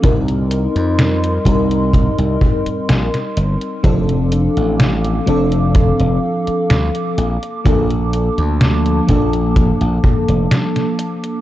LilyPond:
<<
  \new Staff \with { instrumentName = "Ambient pad" } { \time 4/4 \key f \mixolydian \tempo 4 = 63 << { c'''1 | d'''1~ | d'''1 | } \\ { <bes' ees''>1 | <a' f''>2.~ <a' f''>8 <bes a''>8~ | <bes a''>1 | } >> }
  \new Staff \with { instrumentName = "FM electric piano" } { \time 4/4 \key f \mixolydian <g c' ees' bes'>4. <g c' ees' bes'>2~ <g c' ees' bes'>8 | <f c' d' a'>4. <f c' d' a'>2 r8 | <f bes d' a'>4. <f bes d' a'>2~ <f bes d' a'>8 | }
  \new Staff \with { instrumentName = "Slap bass" } { \clef bass \time 4/4 \key f \mixolydian c,8. f,8. c,8. c,16 r8 bes,,16 r16 g,,16 r16 | f,,8. a,,8. f,,8. f,,16 r8 d,16 r16 bes,,16 r16 | bes,,8. d,8. bes,,8. bes,,16 r16 f,,16 r4 | }
  \new DrumStaff \with { instrumentName = "Drums" } \drummode { \time 4/4 <hh bd>16 hh16 hh16 hh16 <hh sn>16 hh16 <hh bd>16 hh16 <hh bd>16 hh16 bd16 hh16 <hh sn>16 <hh sn>16 hh16 hh16 | <hh bd>16 hh16 hh16 hh16 <hh sn>16 hh16 hh16 hh16 <hh bd>16 hh8 hh16 <hh sn>16 hh16 hh16 hh16 | <hh bd>16 hh16 hh16 hh16 <hh sn>16 hh16 <hh bd>16 hh16 <hh bd>16 hh16 bd16 hh16 <hh sn>16 <hh sn>16 hh16 hh16 | }
>>